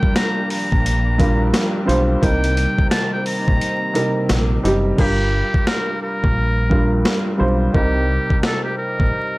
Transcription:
Already playing: G2 F3 G3 A#3 D4 F4 G4 A#4 G5
0.03 kick
0.16 A#5, snare, closed hi-hat
0.50 A#5, open hi-hat
0.72 A#1, kick
0.86 closed hi-hat
1.18 G2 G3 F4 A#4, kick, closed hi-hat
1.54 snare, closed hi-hat
1.85 B1 G2 G3 F4 C5
1.89 closed hi-hat
2.21 C2 C3 D#3 G3 A#3 C4 D#4 A#4 G5, kick, closed hi-hat
2.44 closed hi-hat
2.57 closed hi-hat
2.78 kick
2.90 A5, snare, closed hi-hat
3.13 G5
3.26 A#5, open hi-hat
3.48 A#1, kick
3.61 closed hi-hat
3.94 C3 G3 D#4 A#4, closed hi-hat
4.29 A#1, snare, closed hi-hat
4.63 F#1 C3 G3 D#4 G4, closed hi-hat
4.96 G1 G2 G3 F4 G4 A#4, kick, crash
5.54 kick
5.67 A#4, snare
6.03 A#4
6.24 A#1, kick
6.69 G2 G3 F4 A#4, kick
7.05 snare
7.37 B1 G2 G3 F4 C5
7.73 C2 C3 G3 D#4 G4 A#4, kick
8.30 kick
8.43 A4, snare
8.64 G4
8.78 A#4
9.00 A#1, kick

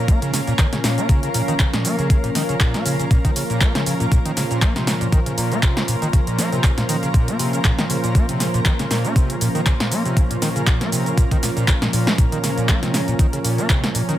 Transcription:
Already playing: A#2 F3 C#4 A#4 F5 A#5
0.08 A#3, kick, closed hi-hat, shaker
0.22 C#3, closed hi-hat, shaker
0.33 C#3, snare, open hi-hat, shaker
0.47 A#2, closed hi-hat, shaker
0.59 D#3, kick, clap, closed hi-hat, shaker
0.73 C#3, snare, closed hi-hat, shaker
0.84 A#2, snare, open hi-hat, shaker
0.98 A#3, closed hi-hat, shaker
1.09 C#3, kick, closed hi-hat, shaker
1.23 C#3, closed hi-hat, shaker
1.34 A#2, open hi-hat, shaker
1.48 D#3, closed hi-hat, shaker
1.59 C#3, kick, clap, closed hi-hat, shaker
1.73 A#2, snare, closed hi-hat, shaker
1.85 A#3, open hi-hat, shaker
1.99 C#3, closed hi-hat, shaker
2.10 C#3, kick, closed hi-hat, shaker
2.24 A#2, closed hi-hat, shaker
2.35 D#3, snare, open hi-hat, shaker
2.49 C#3, closed hi-hat, shaker
2.60 A#2, kick, clap, closed hi-hat, shaker
2.74 A#3, snare, closed hi-hat, shaker
2.86 C#3, open hi-hat, shaker
3.00 C#3, closed hi-hat, shaker
3.11 A#2, kick, closed hi-hat, shaker
3.25 D#3, kick, closed hi-hat, shaker
3.36 C#3, open hi-hat, shaker
3.50 A#2, closed hi-hat, shaker
3.61 A#3, kick, clap, closed hi-hat, shaker
3.75 C#3, snare, closed hi-hat, shaker
3.86 C#3, open hi-hat, shaker
4.00 A#2, closed hi-hat, shaker
4.12 A#2 C5, kick, closed hi-hat, shaker
4.25 D#3, closed hi-hat, shaker
4.37 C#3, snare, open hi-hat, shaker
4.51 A#2, closed hi-hat, shaker
4.62 A#3, kick, clap, closed hi-hat, shaker
4.76 C3, snare, closed hi-hat, shaker
4.87 C#3, snare, open hi-hat, shaker
5.01 A#2, closed hi-hat, shaker
5.12 D#3, kick, closed hi-hat, shaker
5.26 C#3, closed hi-hat, shaker
5.38 A#2, open hi-hat, shaker
5.52 A#3, closed hi-hat, shaker
5.63 C3, kick, clap, closed hi-hat, shaker
5.77 C#3, snare, closed hi-hat, shaker
5.88 A#2, open hi-hat, shaker
6.02 D#3, closed hi-hat, shaker
6.13 C#3, kick, closed hi-hat, shaker
6.27 A#2, closed hi-hat, shaker
6.39 A#3, snare, open hi-hat, shaker
6.52 C3, closed hi-hat, shaker
6.64 C#3, kick, clap, closed hi-hat, shaker
6.78 A#2, snare, closed hi-hat, shaker
6.89 D#3, open hi-hat, shaker
7.03 C#3, closed hi-hat, shaker
7.14 A#2, kick, closed hi-hat, shaker
7.28 A#3, closed hi-hat, shaker
7.39 C3, open hi-hat, shaker
7.53 C#3, closed hi-hat, shaker
7.65 A#2, kick, clap, closed hi-hat, shaker
7.79 D#3, snare, closed hi-hat, shaker
7.90 C#3, open hi-hat, shaker
8.04 A#2, closed hi-hat, shaker
8.15 A#3, kick, closed hi-hat, shaker
8.29 C3, closed hi-hat, shaker
8.40 C#3, snare, open hi-hat, shaker
8.54 A#2, closed hi-hat, shaker
8.65 D#3, kick, clap, closed hi-hat, shaker
8.79 C#3, snare, closed hi-hat, shaker
8.91 A#2, snare, open hi-hat, shaker
9.05 A#3, closed hi-hat, shaker
9.16 C3, kick, closed hi-hat, shaker
9.30 C#3, closed hi-hat, shaker
9.41 A#2, open hi-hat, shaker
9.55 D#3, closed hi-hat, shaker
9.66 C#3, kick, clap, closed hi-hat, shaker
9.80 A#2, snare, closed hi-hat, shaker
9.91 A#3, open hi-hat, shaker
10.05 C3, closed hi-hat, shaker
10.17 C#3, kick, closed hi-hat, shaker
10.31 A#2, closed hi-hat, shaker
10.42 D#3, snare, open hi-hat, shaker
10.56 C#3, closed hi-hat, shaker
10.67 A#2, kick, clap, closed hi-hat, shaker
10.81 A#3, snare, closed hi-hat, shaker
10.92 C3, open hi-hat, shaker
11.06 C#3, closed hi-hat, shaker
11.17 A#2, kick, closed hi-hat, shaker
11.31 D#3, kick, closed hi-hat, shaker
11.43 A#2, snare, open hi-hat, shaker
11.57 A#2, closed hi-hat, shaker
11.68 A#2, kick, clap, closed hi-hat, shaker
11.82 A#2, snare, closed hi-hat, shaker
11.93 A#2, open hi-hat, shaker
12.07 A#3, snare, closed hi-hat, shaker
12.18 A#2 C#4, kick, closed hi-hat, shaker
12.32 D#3, closed hi-hat, shaker
12.44 C#3, snare, open hi-hat, shaker
12.57 A#2, closed hi-hat, shaker
12.69 A#3, kick, clap, closed hi-hat, shaker
12.83 C3, snare, closed hi-hat, shaker
12.94 C#3, snare, open hi-hat, shaker
13.08 A#2, closed hi-hat, shaker
13.19 D#3, kick, closed hi-hat, shaker
13.33 C#3, closed hi-hat, shaker
13.44 A#2, open hi-hat, shaker
13.58 A#3, closed hi-hat, shaker
13.70 C3, kick, clap, closed hi-hat, shaker
13.84 C#3, snare, closed hi-hat, shaker
13.95 A#2, open hi-hat, shaker
14.09 D#3, closed hi-hat, shaker

